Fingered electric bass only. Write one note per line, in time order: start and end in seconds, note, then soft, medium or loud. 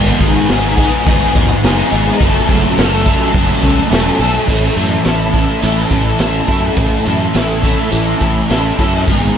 0.21 0.38 G#1 medium
0.50 0.85 G#1 medium
1.07 1.24 G#1 medium
1.36 1.53 D#2 loud
1.64 1.81 F#1 medium
1.92 2.10 G#1 medium
2.21 2.38 F#1 medium
2.49 2.67 F#1 medium
2.79 3.13 F#1 loud
3.34 3.52 F#1 medium
3.64 3.81 C#2 medium
3.91 4.09 E1 medium
4.19 4.37 B1 medium
4.48 4.68 A1 medium
4.76 4.97 F#2 medium
5.05 5.46 A1 medium
5.63 5.83 A1 medium
5.91 6.11 A1 medium
6.20 6.40 A1 medium
6.49 6.69 F#2 medium
6.77 6.97 A1 medium
7.07 7.27 F#2 medium
7.35 7.75 A1 medium
7.93 8.13 A1 medium
8.21 8.41 A1 medium
8.51 8.71 A1 medium
8.79 9.09 F#2 medium
9.08 9.28 G#1 medium